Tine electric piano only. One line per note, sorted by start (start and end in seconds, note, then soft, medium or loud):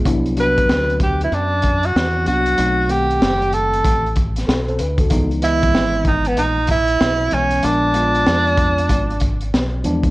0.05 0.34 F#3 medium
0.05 0.35 B3 medium
0.05 0.35 D4 medium
0.05 0.35 E4 medium
0.37 1.53 F#3 medium
0.37 1.53 B3 medium
0.37 1.53 D4 medium
0.37 1.54 F#4 medium
2.26 2.55 F#3 medium
2.26 2.56 B3 medium
2.26 2.56 D4 medium
2.26 2.56 F#4 medium
2.57 2.87 F#3 medium
2.57 2.87 A3 medium
2.57 2.87 C4 medium
2.57 2.88 D#4 medium
2.88 4.05 D#3 medium
2.88 4.05 A3 medium
2.88 4.06 C4 medium
2.88 4.06 F#5 medium
4.47 4.67 F#4 medium
4.47 4.67 A4 medium
4.68 4.79 A4 medium
4.68 4.79 C5 medium
4.80 4.99 B4 medium
5.00 5.30 F#4 medium
5.00 5.30 A4 medium
5.11 5.40 E3 medium
5.11 5.40 G#3 medium
5.11 5.40 B3 medium
5.11 5.41 D#4 medium
5.42 6.58 E3 medium
5.42 6.58 G#3 medium
5.42 6.59 B3 medium
5.42 6.59 D#5 medium
7.31 7.60 E3 medium
7.31 7.61 G#3 medium
7.31 7.61 B3 medium
7.31 7.61 C#4 medium
7.63 7.92 F3 medium
7.63 7.92 G#3 medium
7.63 7.93 B3 medium
7.63 7.93 D4 medium
7.94 9.11 F3 medium
7.94 9.11 G#3 medium
7.94 9.11 B3 medium
7.94 9.11 F4 medium
9.84 10.11 F3 medium
9.84 10.11 G#3 medium
9.84 10.11 B3 medium
9.84 10.11 D4 loud